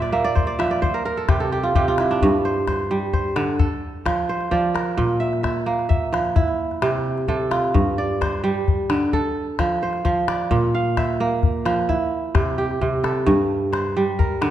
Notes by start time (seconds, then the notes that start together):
Already playing: A#2 A#4 C5 E5
0.02 D5
0.12 A#3 E5
0.24 D5
0.35 C5, calabash thump
0.47 D5
0.59 F3 E5, calabash click
0.71 D5
0.82 C5, calabash thump
0.94 A#4
1.05 A#4
1.17 A4
1.29 C3 G4, calabash thump, calabash click
1.40 A4
1.52 G4
1.63 F4, calabash click
1.75 C3 G4, calabash thump, calabash click
1.88 F4
1.98 E4, calabash click
2.11 D4
2.22 G2, calabash thump
2.45 C5
2.68 C5, calabash thump, calabash click
2.91 G3
3.13 C5, calabash thump
3.36 D3, calabash click
3.59 A4, calabash thump
4.05 F3, calabash thump, calabash click
4.29 C5
4.41 calabash click
4.51 F3 D5, calabash thump, calabash click
4.74 A#4, calabash click
4.97 A#2, calabash thump, calabash click
5.20 E5
5.33 calabash click
5.43 E5, calabash thump, calabash click
5.66 A#3, calabash click
5.79 calabash click
5.89 E5, calabash thump
6.13 F3, calabash click
6.25 calabash click
6.36 E4, calabash thump
6.48 calabash click
6.71 calabash click
6.82 C3, calabash click
7.18 calabash click
7.28 C3 A4, calabash thump
7.51 F4, calabash click
7.64 calabash click
7.74 G2, calabash thump
7.98 D5
8.21 C5, calabash thump, calabash click
8.44 G3
8.68 calabash thump
8.90 D3, calabash click
9.13 A4, calabash thump
9.59 F3, calabash thump, calabash click
9.83 C5
9.93 calabash click
10.05 F3, calabash thump, calabash click
10.28 D5, calabash click
10.51 A#2, calabash thump
10.75 F5
10.97 E5, calabash thump, calabash click
11.20 A#3
11.43 calabash thump
11.65 F3, calabash click
11.89 E4, calabash thump
12.35 C3, calabash thump, calabash click
12.58 G4
12.71 calabash click
12.81 C3, calabash thump, calabash click
13.04 A4, calabash click
13.26 G2, calabash thump
13.73 C5, calabash click
13.97 G3
14.19 A#4, calabash thump
14.41 D3, calabash click